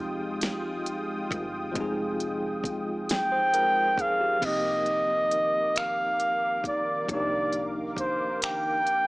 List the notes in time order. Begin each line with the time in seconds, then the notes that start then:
Already playing: F1 F3 G#3 C4 D#4 F4 G4 G5 D#6
0.41 snare, closed hi-hat
0.86 closed hi-hat
1.31 G1, kick, closed hi-hat
1.72 F3 G#3, kick, closed hi-hat
1.76 F1 C4 D#4
1.80 G#4
2.20 closed hi-hat
2.64 kick, closed hi-hat
3.09 G5, snare, closed hi-hat
3.32 C5
3.54 A#4, closed hi-hat
3.98 A#1 G#4 F5, kick, closed hi-hat
4.21 G4
4.39 C2 D#3 F3 A#3 A#4 F5 D6, kick, closed hi-hat, crash
4.44 C4 D#4 D#5
4.48 G4
4.86 closed hi-hat
5.31 closed hi-hat
5.76 F5, finger snap, closed hi-hat
6.20 closed hi-hat
6.64 A#1 D5, kick, closed hi-hat
7.05 C2 F3 A#3, kick
7.09 D4 D#4 D5, closed hi-hat
7.14 G4
7.53 closed hi-hat
7.96 C5, kick, closed hi-hat
8.42 G5, finger snap, closed hi-hat
8.87 closed hi-hat